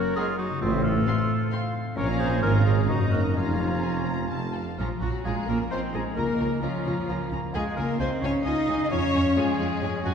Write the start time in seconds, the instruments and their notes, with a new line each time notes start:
Already playing: harp F#2 F#3 A#3 C#4 F#4 A#4 C#5 A#5, french horn section A#3, oboe F#4, clarinet A#4, flute C#5
0.05 harp F#5
0.16 french horn section G#3, viola section C#4, oboe F4, clarinet G#4, harp A#4, violin section F#5 A#5
0.27 harp F#4
0.38 french horn section F#3, harp C#4, oboe D#4, clarinet F#4
0.50 harp C#3
0.60 double bass section A1, tuba A1, harp A2, cello section A2, french horn section F3, oboe C4, clarinet F4, flute C5
0.72 harp C4
0.83 french horn section A3, oboe F4, harp F4, clarinet A4
0.95 harp C5
1.05 viola section C4, harp F4, flute C5, violin section F5 C6
1.18 harp F5
1.29 harp C6
1.40 harp F5
1.51 viola section C4, harp C5, flute F5, violin section F5 C6
1.63 harp F4
1.74 harp C4
1.85 harp A3
1.96 double bass section A#1, tuba A#1, harp A#2, cello section A#2, french horn section C#4, viola section C#4, oboe A#4, flute C#5, clarinet C#5, violin section F5 A#5
2.08 harp A#3
2.19 french horn section C4, harp F4, oboe G#4, clarinet C5
2.42 double bass section G#1, tuba G#1, cello section G#2, french horn section A#3, viola section C#4, oboe F4, harp A#4, clarinet A#4, violin section F5 A#5
2.54 harp F5
2.64 french horn section G#3, oboe F4, clarinet G#4, harp C#6
2.77 harp F5
2.88 double bass section F#1, tuba F#1, harp F#2, cello section F#2, french horn section F#3, oboe D#4, viola section D#4, clarinet F#4, violin section D#5 A#5, flute D#5
3.01 harp A#3
3.12 french horn section A#3, harp D#4, oboe F#4, clarinet A#4
3.24 harp D#5
3.35 double bass section F1, tuba F1, harp F2, cello section F2, french horn section F3, oboe C#4, viola section C#4, clarinet F4, violin section F5 A#5, flute F5
3.48 harp A#3
3.60 harp F4
3.72 harp C#5
3.83 harp A#4, violin section G#5
3.96 harp F5
4.07 violin section A#5, harp C#6
4.19 harp F5
4.31 double bass section F1, tuba F1, harp F2, cello section F2, viola section C4, violin section A5
4.43 harp A3
4.55 harp F4, violin section F5
4.67 harp C5
4.78 double bass section A#1, harp A#2, cello section F3, french horn section F3, clarinet C#4, viola section C#4 F4, oboe F4, violin section F4 A#5, flute A#5
4.95 harp F3
5.01 double bass section A#1, cello section F#3, french horn section F#3, viola section C#4 F4, oboe F#4, violin section F#4 A#5
5.10 harp A#3
5.24 double bass section A#1, french horn section G#3, cello section G#3, viola section C#4 F4, bassoon F4, harp F4, violin section G#4 A#5, oboe G#4
5.41 harp C#5
5.48 double bass section A#1, cello section A#3, french horn section A#3, viola section C#4 F4, violin section A#4 A#5, oboe A#4
5.57 harp A#4
5.71 double bass section A#1, cello section C4, french horn section C4, viola section C#4 F4, bassoon D#4, violin section C5 A#5, oboe C5, harp C#5
5.87 harp F4
5.94 double bass section A#1, cello section G#3, french horn section G#3, viola section C#4 F4, violin section G#4 A#5, oboe G#4
6.02 harp A#3
6.16 double bass section C#2, harp C#3, cello section A#3, french horn section A#3, viola section C#4 F4, violin section A#4 A#5, oboe A#4
6.32 harp C#4
6.39 double bass section C#2, viola section C#4 F4, violin section A#5
6.48 harp A#3
6.62 double bass section C#2, cello section F3, french horn section F3, viola section C#4 F4, bassoon C#4, oboe F4, harp F4, violin section F4 A#5
6.78 harp C#5
6.86 double bass section C#2, viola section C#4 F4, violin section A#5
6.94 harp A#4
7.09 double bass section C#2, bassoon A#3, viola section C#4 F4, harp C#5, violin section A#5
7.24 harp F4
7.31 double bass section C#2, viola section C#4 F4, violin section A#5
7.39 harp A#3
7.54 double bass section C#2, harp C#3, cello section G#3, french horn section G#3, clarinet C#4, viola section C#4 F4, bassoon F4, oboe G#4, violin section G#4 G#5, flute F5
7.76 double bass section C#2, cello section A#3, french horn section A#3, viola section C#4 F4, oboe A#4, violin section A#4 G#5
7.85 harp G#3
8.00 double bass section C#2, cello section C4, french horn section C4, viola section C#4 F4, bassoon D#4, harp F4, oboe C5, violin section C5 G#5
8.15 harp C#5
8.21 double bass section C#2, viola section C#4 F4, cello section C#4, french horn section C#4, oboe C#5, violin section C#5 G#5
8.31 harp G#4
8.45 double bass section C#2, viola section C#4 F4, cello section D#4, french horn section D#4, harp C#5, oboe D#5, violin section D#5 G#5
8.61 harp F4
8.67 double bass section C#2, viola section C#4 F4, violin section G#5
8.77 harp G#3
8.85 violin section D#5
8.91 double bass section F2, harp F3, bassoon C#4, viola section C#4 F4, cello section C#4, french horn section C#4, oboe C#5, violin section C#5 G#5
9.07 harp G#3
9.14 double bass section F2, viola section C#4 F4, violin section G#5
9.22 harp F4
9.37 double bass section F2, cello section G#3, french horn section G#3, viola section C#4 F4, bassoon F4, oboe G#4, violin section G#4 G#5, harp C#5
9.59 double bass section F2, viola section C#4 F4, violin section G#5
9.67 harp F5
9.81 double bass section F2, bassoon C#4, viola section C#4 F4, harp G#4, violin section G#5
9.97 harp C#5
10.04 double bass section F2, cello section F#3, french horn section F#3, viola section C#4 F4, violin section F#4 G#5, oboe F#4